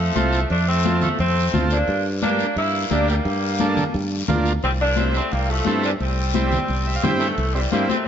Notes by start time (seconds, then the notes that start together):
Already playing: F3 A3
0.15 C2 C4 F4 A4, high conga, short guiro
0.33 short guiro
0.50 F2 A3 D4, high conga, long guiro
0.68 A3 C4
0.84 C4 F4 A4, high conga, short guiro
1.02 F3 A3, low conga, short guiro
1.19 F2 A3 C4, high conga, long guiro
1.53 D2 C4 F4 A4, high conga, low conga, short guiro
1.70 A#3 D4, short guiro
1.88 G2, high conga, long guiro
2.22 A#3 D4 G4, high conga, short guiro
2.39 short guiro
2.56 G2 A#3 E4, high conga, long guiro
2.91 D2 A#3 D4 G4, high conga, short guiro
3.08 G3 A#3, short guiro
3.25 G2, high conga, long guiro
3.60 A#3 D4 A4, high conga, short guiro
3.77 low conga, short guiro
3.94 G2, high conga, long guiro
4.28 D2 A#3 D4 F4, high conga, low conga, short guiro
4.46 short guiro
4.63 C2 G3 C4, high conga, long guiro
4.81 A#3 D4
4.96 C4 E4 G4, high conga, short guiro
5.14 A3 C4, short guiro
5.31 C2 G3 A#3, high conga, long guiro
5.50 F3 A3
5.65 G2 C4 E4 A4, high conga, short guiro
5.84 E3 G3, short guiro
6.00 C2 G3 C4, high conga, long guiro
6.34 C4 E4 G4, high conga, short guiro
6.51 low conga, short guiro
6.68 C2, high conga, long guiro
6.87 E5
6.96 F5
7.03 G2 G3 A#3 C4 E4 G4 G5, high conga, low conga, short guiro
7.19 E3 A3, short guiro
7.38 C2, long guiro
7.55 E3 G3 C4 E4 G4
7.71 G2 G3 A#3 C4 E4 G4, high conga, short guiro
7.89 A3 C4, high conga, short guiro